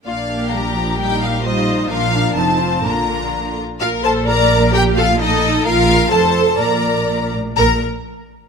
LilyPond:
<<
  \new Staff \with { instrumentName = "Violin section" } { \time 2/4 \key bes \major \tempo 4 = 128 f''4 bes''4 | g''8 f''8 ees''4 | f''4 a''4 | bes''4. r8 |
f''8 a''8 bes''4 | g''8 f''8 ees''4 | f''4 a''4 | bes''4. r8 |
bes''8 r4. | }
  \new Staff \with { instrumentName = "Violin section" } { \time 2/4 \key bes \major << { d''4 bes'4 | bes'4 c''4 | bes'4 c''4 | bes'4. r8 |
bes'8 c''8 d''4 | bes'8 a'8 a'4 | bes'4 c''4 | d''4. r8 |
bes'8 r4. | } \\ { f'8 g'4.~ | g'4 f'4 | f'8 d'8 ees'8 f'8 | f'4. r8 |
r2 | r2 | r2 | r2 |
r2 | } >> }
  \new Staff \with { instrumentName = "Viola section" } { \time 2/4 \key bes \major << { d'2 | ees'4 ees'4 | d'4 c'4 | d'4. r8 |
f'8 a'8 bes'4 | g'8 f'8 ees'4 | f'4 a'4 | bes'4. r8 |
bes'8 r4. | } \\ { bes4 g8 f8 | g4 g4 | f4 f4 | d4. r8 |
r2 | r2 | r2 | r2 |
r2 | } >> }
  \new Staff \with { instrumentName = "Cello section" } { \clef bass \time 2/4 \key bes \major bes,2~ | bes,2 | bes,4 f,4 | bes,4. r8 |
bes,2~ | bes,2 | bes,4 f,4 | bes,4 bes,8 a,8 |
bes,8 r4. | }
  \new Staff \with { instrumentName = "Double bass section" } { \clef bass \time 2/4 \key bes \major bes,,2~ | bes,,2 | bes,,4 f,,4 | bes,,4. r8 |
bes,,2~ | bes,,2 | bes,,4 f,,4 | bes,,4. r8 |
bes,,8 r4. | }
>>